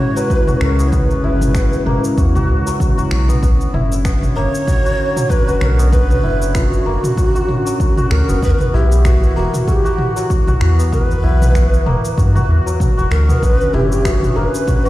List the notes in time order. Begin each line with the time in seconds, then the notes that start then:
Already playing: C#3 G#3 A#3 C#4 E4 F#4 C#5
0.16 F#3 B4, cabasa
0.30 kick, cabasa
0.47 G1 F#4, mid tom, cabasa
0.61 C#2 A#4, finger snap
0.79 B3, cabasa
0.86 C#5
0.92 B3 B4, kick, mid tom, cabasa
1.11 cabasa
1.24 G1 E4
1.41 mid tom, cabasa
1.55 B3, finger snap, kick, cabasa
1.73 cabasa
1.86 G1 A#3, mid tom
2.04 cabasa
2.18 E2 F#4, kick, cabasa
2.35 F#4, mid tom, cabasa
2.49 C#2
2.66 F#3, cabasa
2.80 kick, mid tom, cabasa
2.98 G1 F#4, cabasa
3.11 B1, finger snap
3.29 B3, mid tom, cabasa
3.42 B1 D3 B3 C#4, kick, cabasa
3.61 cabasa
3.74 F#1 E4, mid tom
3.92 cabasa
4.05 B3, finger snap, kick, cabasa
4.23 mid tom, cabasa
4.36 F#1 A#3 C#5
4.55 cabasa
4.67 F#4, kick, mid tom, cabasa
4.85 F#4, cabasa
5.16 F#3, mid tom, cabasa
5.30 B4, kick, cabasa
5.47 F#1 F#4, cabasa
5.61 B1 B4, finger snap, mid tom
5.65 A#4
5.78 B3, cabasa
5.92 B3 B4, kick, cabasa
6.10 mid tom, cabasa
6.23 F#1 E4
6.42 cabasa
6.55 B3 F#4, finger snap, kick, mid tom, cabasa
6.73 cabasa
6.86 F#1 A#3
7.04 mid tom, cabasa
7.17 F#4, kick, cabasa
7.35 F#4, cabasa
7.49 mid tom
7.66 F#3, cabasa
7.80 kick, cabasa
7.97 F#4, mid tom, cabasa
8.11 D2 A#4, finger snap
8.29 F#1 B3, cabasa
8.42 E2 E3 B3 B4 F#5, kick, cabasa
8.50 A#4
8.59 B4, mid tom, cabasa
8.74 B1 E4 G4
8.92 cabasa
9.05 B3 F#4, finger snap, kick, mid tom, cabasa
9.23 cabasa
9.36 E1 A#3 F#4
9.54 mid tom, cabasa
9.67 F#4 A#4, kick, cabasa
9.72 G4
9.85 F#4, cabasa
9.98 mid tom
10.16 F#3 F#4, cabasa
10.30 kick, cabasa
10.47 B1 F#4, mid tom, cabasa
10.61 E2, finger snap
10.79 B3, cabasa
10.92 B3 B4, kick, mid tom, cabasa
11.11 cabasa
11.23 B1 E4
11.42 mid tom, cabasa
11.55 B3, finger snap, kick, cabasa
11.74 cabasa
11.86 E1 A#3, mid tom
12.05 cabasa
12.18 G2 F#4, kick, cabasa
12.35 F#4, mid tom, cabasa
12.49 E2
12.66 F#3, cabasa
12.80 kick, mid tom, cabasa
12.97 E1 F#4, cabasa
13.11 D2 A#4, finger snap
13.29 B3, mid tom, cabasa
13.42 B1 D3 B3 C#4 B4, kick, cabasa
13.61 cabasa
13.74 F#1 E4 G4, mid tom
13.92 cabasa
14.05 B3 F#4, finger snap, kick, cabasa
14.23 mid tom, cabasa
14.36 F#1 A#3 A#4
14.48 B4
14.55 cabasa
14.67 F#4, kick, mid tom, cabasa
14.85 F#4, cabasa